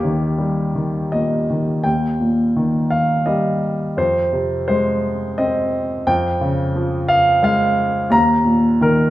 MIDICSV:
0, 0, Header, 1, 2, 480
1, 0, Start_track
1, 0, Tempo, 729927
1, 1219, Time_signature, 3, 2, 24, 8
1, 1219, Tempo, 706714
1, 3139, Tempo, 692042
1, 6204, End_track
2, 0, Start_track
2, 0, Title_t, "Grand piano"
2, 0, Program_c, 0, 0
2, 0, Control_c, 0, 64, 127
2, 0, Note_on_c, 0, 39, 52
2, 0, Note_on_c, 0, 58, 46
2, 0, Note_on_c, 0, 67, 62
2, 27, Note_on_c, 0, 51, 42
2, 252, Note_on_c, 0, 55, 44
2, 485, Note_off_c, 0, 51, 0
2, 495, Note_on_c, 0, 51, 39
2, 736, Note_on_c, 0, 75, 59
2, 747, Note_on_c, 0, 46, 41
2, 959, Note_off_c, 0, 67, 0
2, 964, Note_off_c, 0, 58, 0
2, 978, Note_off_c, 0, 51, 0
2, 988, Note_on_c, 0, 51, 37
2, 1191, Note_off_c, 0, 55, 0
2, 1196, Note_off_c, 0, 39, 0
2, 1207, Note_on_c, 0, 79, 65
2, 1208, Note_off_c, 0, 46, 0
2, 1214, Note_off_c, 0, 51, 0
2, 1218, Note_on_c, 0, 39, 43
2, 1227, Control_c, 0, 64, 0
2, 1232, Note_off_c, 0, 75, 0
2, 1341, Control_c, 0, 64, 127
2, 1457, Note_on_c, 0, 46, 35
2, 1701, Note_on_c, 0, 51, 40
2, 1933, Note_on_c, 0, 77, 62
2, 1954, Note_off_c, 0, 79, 0
2, 2173, Note_on_c, 0, 75, 57
2, 2179, Note_on_c, 0, 55, 45
2, 2183, Note_off_c, 0, 77, 0
2, 2391, Note_off_c, 0, 46, 0
2, 2630, Note_off_c, 0, 39, 0
2, 2632, Note_off_c, 0, 51, 0
2, 2644, Note_off_c, 0, 55, 0
2, 2657, Note_on_c, 0, 41, 45
2, 2663, Note_on_c, 0, 72, 64
2, 2667, Control_c, 0, 64, 0
2, 2669, Note_off_c, 0, 75, 0
2, 2775, Control_c, 0, 64, 127
2, 2898, Note_on_c, 0, 48, 42
2, 3127, Note_off_c, 0, 72, 0
2, 3137, Note_on_c, 0, 72, 61
2, 3147, Note_on_c, 0, 56, 50
2, 3623, Note_on_c, 0, 75, 71
2, 3629, Note_on_c, 0, 60, 52
2, 3640, Note_off_c, 0, 72, 0
2, 3839, Note_off_c, 0, 48, 0
2, 4076, Note_off_c, 0, 41, 0
2, 4081, Note_off_c, 0, 56, 0
2, 4092, Note_off_c, 0, 60, 0
2, 4101, Note_on_c, 0, 41, 58
2, 4102, Note_on_c, 0, 79, 81
2, 4113, Control_c, 0, 64, 0
2, 4118, Note_off_c, 0, 75, 0
2, 4219, Control_c, 0, 64, 127
2, 4340, Note_on_c, 0, 49, 42
2, 4578, Note_on_c, 0, 53, 53
2, 4807, Note_on_c, 0, 77, 82
2, 4830, Note_off_c, 0, 79, 0
2, 5028, Note_off_c, 0, 77, 0
2, 5043, Note_on_c, 0, 56, 54
2, 5053, Note_on_c, 0, 77, 83
2, 5256, Note_off_c, 0, 49, 0
2, 5496, Note_off_c, 0, 41, 0
2, 5498, Note_off_c, 0, 53, 0
2, 5500, Note_off_c, 0, 77, 0
2, 5509, Note_off_c, 0, 56, 0
2, 5511, Note_on_c, 0, 39, 58
2, 5522, Note_on_c, 0, 82, 84
2, 5533, Control_c, 0, 64, 0
2, 5659, Control_c, 0, 64, 127
2, 5756, Note_on_c, 0, 46, 44
2, 6004, Note_on_c, 0, 51, 45
2, 6012, Note_on_c, 0, 70, 70
2, 6026, Note_off_c, 0, 82, 0
2, 6204, Note_off_c, 0, 39, 0
2, 6204, Note_off_c, 0, 46, 0
2, 6204, Note_off_c, 0, 51, 0
2, 6204, Note_off_c, 0, 70, 0
2, 6204, End_track
0, 0, End_of_file